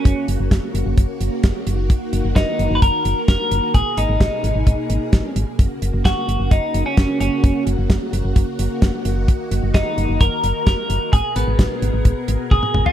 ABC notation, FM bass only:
X:1
M:4/4
L:1/16
Q:1/4=130
K:F#
V:1 name="FM bass" clef=bass
F,,, z F,,, F,,, F,,, z F,,, F,,, F,,, z F,,, z F,,, z F,,,2- | F,,, z F,,, F,,, F,,, z F,,, F,,, F,,, z F,,, z F,,, z F,,, z | G,,, z G,,, G,,, G,,, z G,,, G,,, G,,, z G,,, z G,,, z G,,, z | F,,, z F,,, F,,, F,,, z F,,, F,,, F,,, z F,,, z F,,, z F,,, z |
F,,, z F,,, F,,, F,,, z F,,, F,,, F,,, z F,,, z F,,, z F,,,2- | F,,, z F,,, F,,, F,,, z F,,, F,,, F,,, z F,,, z F,,, z F,,, z | G,,, z G,,, G,,, G,,, z G,,, G,,, G,,, z G,,, z G,,, z G,,, z |]